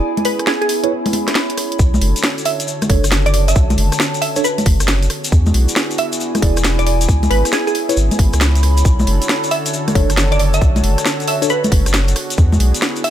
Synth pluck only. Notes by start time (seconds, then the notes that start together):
0.25 B4
0.47 G#4
0.61 G#4
2.46 E5
3.26 D5
3.34 D5
3.48 E5
4.22 E5
4.44 B4
5.99 E5
6.79 D5
6.87 D5
7.30 B4
7.53 G#4
7.67 G#4
9.51 E5
10.32 D5
10.40 D5
10.54 E5
11.28 E5
11.50 B4
13.04 E5